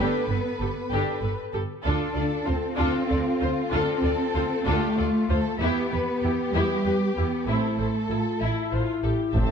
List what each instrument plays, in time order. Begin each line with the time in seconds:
Already playing: cello section B3, french horn section A4 B4
0.00 viola section D4 A4, violin section G4 B4
0.29 double bass section G1, viola section A4, violin section B4
0.60 double bass section G1, viola section G4 A4, violin section A4
0.91 double bass section G1, viola section D4 A4, violin section G4
1.22 double bass section G1, viola section A4, violin section B4
1.53 double bass section G1, viola section G4 A4, violin section A4
1.84 double bass section D2, viola section D4 F4, cello section D4, french horn section F4 A4, violin section A4
2.15 double bass section D2, viola section F4 A4, violin section D5
2.46 double bass section D2, cello section C4, viola section F4, violin section C5
2.75 double bass section D2, viola section D4 F4, violin section F4 A4
3.08 double bass section D2, viola section F4 A4, violin section D5
3.40 double bass section D2, viola section F4, violin section C5
3.71 double bass section D2, cello section C4, viola section D4 F4, violin section A4
4.03 double bass section D2, viola section F4 A4, violin section D5
4.34 double bass section D2, viola section F4, violin section C5
4.66 double bass section D2, cello section A3, viola section D4 F4, violin section G4 A4
4.97 double bass section D2, viola section F4 A4, violin section F4 D5
5.29 double bass section D2, viola section F4, violin section A4 C5
5.60 double bass section E2, cello section B3, viola section B3 G4, violin section E4 G4, french horn section G4 B4
5.91 double bass section E2, viola section G4, violin section B4
6.23 double bass section E2, viola section E4 G4, violin section G4
6.53 double bass section E2, cello section G3, viola section B3 G4, violin section E4
6.85 double bass section E2, viola section G4, violin section B4
7.16 double bass section E2, cello section B3, viola section E4 G4, violin section G4
7.47 double bass section A1, cello section A3, viola section C4 E4, violin section E4 A4, french horn section E4 C5
7.79 double bass section A1, viola section E4 A4, violin section C5
8.09 double bass section A1, viola section E4, french horn section F4, violin section A4
8.40 double bass section A1, french horn section E4, violin section E4, viola section E4
8.72 double bass section A1, viola section F4, violin section C5
9.03 double bass section A1, viola section G4, violin section A4
9.33 double bass section A1, tuba A1, cello section A2, french horn section C4, string section C4 A4 E5 A5, viola section C4, violin section C5 E5, taiko, impact